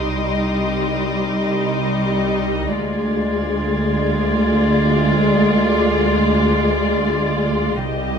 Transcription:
Already playing: cello section C2, double bass section C2, viola section G3, violin section D#4 D#5 C6 D6 D#6
2.73 cello section D2, double bass section D2, viola section G#3, violin section F4 D5 G#6 A6
7.80 double bass section C2, cello section C2, viola section G3, violin section G4 D#5

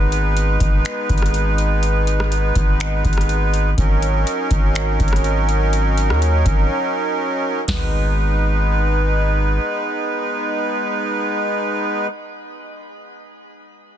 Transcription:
Already playing: 808-style bass G#1, accordion G#3 B3 D#4 B4
0.12 closed hi-hat
0.37 closed hi-hat
0.60 808-style bass G#1, kick, closed hi-hat
0.85 finger snap, closed hi-hat
1.09 808-style bass G#1, kick, closed hi-hat
1.18 closed hi-hat
1.22 cross-stick, closed hi-hat
1.34 closed hi-hat
1.58 closed hi-hat
1.83 closed hi-hat
2.07 closed hi-hat
2.20 cross-stick
2.32 closed hi-hat
2.55 808-style bass G#1, kick, closed hi-hat
2.80 finger snap, closed hi-hat
3.05 808-style bass G#1, kick, closed hi-hat
3.13 closed hi-hat
3.18 cross-stick, closed hi-hat
3.29 closed hi-hat
3.54 closed hi-hat
3.78 808-style bass G#1, accordion F#3 C#4 D#4 A#4, kick, closed hi-hat
4.02 closed hi-hat
4.27 closed hi-hat
4.51 808-style bass G#1, kick, closed hi-hat
4.75 finger snap, closed hi-hat
5.00 808-style bass G#1, kick, closed hi-hat
5.08 closed hi-hat
5.13 cross-stick, closed hi-hat
5.24 closed hi-hat
5.49 closed hi-hat
5.73 closed hi-hat
5.98 closed hi-hat
6.10 808-style bass D#2, cross-stick
6.22 closed hi-hat
6.46 808-style bass G#1, kick, closed hi-hat
7.68 808-style bass G#1, accordion G#3 B3 D#4 B4, snare, floor tom, crash

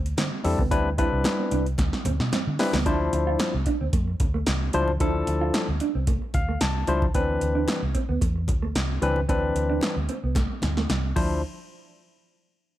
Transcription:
Already playing: fingered electric bass D2
0.06 closed hi-hat
0.17 fingered electric bass D3, clean electric guitar C4, snare, closed hi-hat, high conga
0.44 fingered electric bass E2, tine electric piano G3 C4 D4 E4 A4, muted clean electric guitar stroke, open hi-hat
0.58 fingered electric bass C#2, clean electric guitar B3, kick, high conga
0.71 fingered electric bass D2, tine electric piano G3 C4 D4 E4 B4, clean electric guitar C4, kick, closed hi-hat, muted conga
0.86 muted clean electric guitar stroke
0.98 tine electric piano G3 C4 D4 E4 B4, clean electric guitar E4, kick, closed hi-hat
1.12 fingered electric bass C2
1.24 muted clean electric guitar stroke, snare, closed hi-hat, high conga
1.39 clean electric guitar C4
1.51 fingered electric bass C2, clean electric guitar D4, closed hi-hat
1.66 closed hi-hat
1.78 fingered electric bass D2, kick, snare, closed hi-hat, muted conga, low conga
1.93 snare
2.05 fingered electric bass D2, clean electric guitar C4, closed hi-hat, muted conga, low conga
2.20 fingered electric bass B2, snare
2.32 clean electric guitar C4, snare, closed hi-hat, high conga
2.47 fingered electric bass D3
2.59 tine electric piano G3 C4 D4 E4 B4, muted clean electric guitar stroke, snare, open hi-hat
2.73 fingered electric bass C#2, clean electric guitar B3, snare, high conga
2.86 fingered electric bass D2, tine electric piano F3 D4 E4 C5, clean electric guitar D4, kick, closed hi-hat, muted conga
3.13 fingered electric bass D2, muted clean electric guitar stroke, closed hi-hat, muted conga
3.27 clean electric guitar F4
3.39 snare, closed hi-hat, high conga
3.54 fingered electric bass C2
3.66 clean electric guitar D4, kick, closed hi-hat
3.81 fingered electric bass D2, clean electric guitar C4
3.93 fingered electric bass F2, clean electric guitar A3, kick, closed hi-hat, muted conga
4.08 muted clean electric guitar stroke
4.20 fingered electric bass D2, kick, closed hi-hat, muted conga, low conga
4.34 clean electric guitar A3
4.46 fingered electric bass C2, snare, closed hi-hat, high conga
4.73 fingered electric bass C#2, tine electric piano F3 D4 E4 C5, clean electric guitar G3, closed hi-hat
4.88 high conga
5.00 fingered electric bass D2, tine electric piano F3 D4 E4 A4, clean electric guitar D4, kick, closed hi-hat, muted conga
5.27 fingered electric bass D2, muted clean electric guitar stroke, closed hi-hat
5.41 clean electric guitar F4
5.54 muted clean electric guitar stroke, snare, closed hi-hat, high conga
5.69 fingered electric bass D2
5.80 clean electric guitar D4, closed hi-hat
5.95 fingered electric bass C2, clean electric guitar C4
6.07 clean electric guitar A3, kick, closed hi-hat, muted conga, low conga
6.22 muted clean electric guitar stroke
6.34 fingered electric bass D2, tine electric piano F5, kick, closed hi-hat, muted conga, low conga
6.49 clean electric guitar A3
6.61 fingered electric bass C2, tine electric piano A5, snare, closed hi-hat, high conga
6.87 fingered electric bass C#2, tine electric piano F3 D4 E4 C5, clean electric guitar G3, closed hi-hat
7.02 kick, high conga
7.14 fingered electric bass D2, tine electric piano E3 C4 D4 B4, clean electric guitar C4, kick, closed hi-hat, muted conga
7.41 fingered electric bass D2, muted clean electric guitar stroke, closed hi-hat
7.55 clean electric guitar D4
7.68 snare, closed hi-hat, high conga
7.82 fingered electric bass C2
7.95 clean electric guitar C4, kick, closed hi-hat
8.09 fingered electric bass D2, clean electric guitar B3
8.21 fingered electric bass E2, clean electric guitar A3, kick, closed hi-hat, muted conga
8.36 muted clean electric guitar stroke
8.48 fingered electric bass D2, kick, closed hi-hat, muted conga, low conga
8.62 clean electric guitar A3
8.75 fingered electric bass C2, snare, closed hi-hat, high conga
9.02 fingered electric bass C#2, tine electric piano E3 C4 D4 B4, clean electric guitar G3, closed hi-hat
9.16 high conga
9.29 fingered electric bass D2, tine electric piano E3 C4 D4 B4, clean electric guitar C4, kick, closed hi-hat, muted conga
9.55 fingered electric bass D2, muted clean electric guitar stroke, closed hi-hat, muted conga
9.70 clean electric guitar D4
9.81 snare, closed hi-hat, high conga
9.96 fingered electric bass D2
10.09 clean electric guitar C4, closed hi-hat
10.23 fingered electric bass C2, clean electric guitar B3
10.35 clean electric guitar A3, kick, snare, closed hi-hat, muted conga, low conga
10.50 muted clean electric guitar stroke
10.62 fingered electric bass D2, snare, closed hi-hat, muted conga, low conga
10.77 clean electric guitar A3, snare
10.89 fingered electric bass C2, snare, closed hi-hat, high conga
11.16 fingered electric bass D2, tine electric piano F3 D4 E4 C5, clean electric guitar F3, kick, crash, muted conga

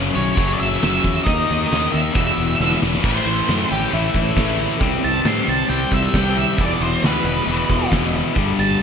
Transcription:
Already playing: clean electric guitar F#2 C#3, distorted electric guitar F#2 C#3 F#3
0.15 fingered electric bass B1, clean electric guitar F#2 C#3 F#3, lead electric guitar C#5, closed hi-hat
0.36 fingered electric bass F#1, distorted electric guitar F#2 C#3, clean electric guitar F#2 C#3, kick, closed hi-hat
0.40 distorted electric guitar F#3
0.53 lead electric guitar D5
0.60 fingered electric bass F#1, clean electric guitar F#2 C#3, lead electric guitar E5, closed hi-hat
0.73 snare
0.82 fingered electric bass F#1, clean electric guitar F#2 C#3 F#3, snare, closed hi-hat
1.04 fingered electric bass E2, clean electric guitar F#2 C#3, kick, closed hi-hat
1.24 fingered electric bass D#2, distorted electric guitar D#3 A#3, lead electric guitar D#5, kick, closed hi-hat
1.28 clean electric guitar D#3 A#3 D#4, distorted electric guitar D#4
1.48 fingered electric bass D#2, clean electric guitar D#3 A#3, closed hi-hat
1.68 lead electric guitar D#5, closed hi-hat
1.72 fingered electric bass D#2, clean electric guitar D#3 A#3 D#4, snare
1.93 fingered electric bass D#2, clean electric guitar D#3 A#3, lead electric guitar E5, closed hi-hat
2.13 fingered electric bass E1, distorted electric guitar E2 B2 E3, clean electric guitar E2 B2 E3, kick, closed hi-hat
2.37 fingered electric bass E1, clean electric guitar E2 B2, closed hi-hat
2.60 fingered electric bass E1, clean electric guitar E2 B2 E3, snare
2.71 snare
2.82 fingered electric bass E1, clean electric guitar E2 B2, snare
2.94 snare
3.02 fingered electric bass A1, distorted electric guitar A2 E3 A3, lead electric guitar C5, kick, crash
3.06 clean electric guitar A2
3.26 fingered electric bass A1, clean electric guitar E3, closed hi-hat
3.37 closed hi-hat
3.48 fingered electric bass F#2, clean electric guitar A3, snare, closed hi-hat
3.70 fingered electric bass A1, clean electric guitar C#4, lead electric guitar G4, closed hi-hat
3.90 fingered electric bass A1, distorted electric guitar A2 E3 A3, clean electric guitar A3, lead electric guitar E4, closed hi-hat
4.14 fingered electric bass A1, clean electric guitar E3, lead electric guitar E4, kick, closed hi-hat
4.37 fingered electric bass A1, clean electric guitar A3, kick, snare, closed hi-hat
4.59 clean electric guitar E4, closed hi-hat
4.79 fingered electric bass C2, distorted electric guitar C3 G3, clean electric guitar C3, kick, closed hi-hat
4.83 distorted electric guitar C4
5.02 fingered electric bass C2, clean electric guitar E3, lead electric guitar A5, closed hi-hat
5.24 fingered electric bass A2, clean electric guitar G3, lead electric guitar C6, snare, closed hi-hat
5.48 fingered electric bass C2, clean electric guitar C4, lead electric guitar A5, closed hi-hat
5.68 fingered electric bass C2, distorted electric guitar C3 G3 C4, clean electric guitar G3, lead electric guitar G5, closed hi-hat
5.92 fingered electric bass C2, clean electric guitar E3, lead electric guitar E5, kick, closed hi-hat
6.03 closed hi-hat
6.14 fingered electric bass C2, clean electric guitar G3, lead electric guitar G5, kick, snare, closed hi-hat
6.36 clean electric guitar E4, lead electric guitar E5, closed hi-hat
6.56 fingered electric bass E1, distorted electric guitar E2 B2 E3, clean electric guitar E2, kick, closed hi-hat
6.61 lead electric guitar D5
6.80 fingered electric bass E1, clean electric guitar E3, lead electric guitar C5, closed hi-hat
6.92 closed hi-hat
7.02 fingered electric bass D2, clean electric guitar G#3, snare, closed hi-hat
7.07 lead electric guitar B4
7.24 fingered electric bass E1, clean electric guitar B3, closed hi-hat
7.46 fingered electric bass E1, distorted electric guitar E2 B2, clean electric guitar G#3, closed hi-hat
7.50 distorted electric guitar E3
7.69 fingered electric bass E1, clean electric guitar E3, kick, closed hi-hat
7.92 fingered electric bass E1, clean electric guitar G#3, kick, snare, closed hi-hat
8.13 clean electric guitar E4, closed hi-hat
8.35 fingered electric bass G1, distorted electric guitar G2 D3 G3, clean electric guitar G2, kick, closed hi-hat
8.58 fingered electric bass G1, clean electric guitar G3, lead electric guitar A5, closed hi-hat

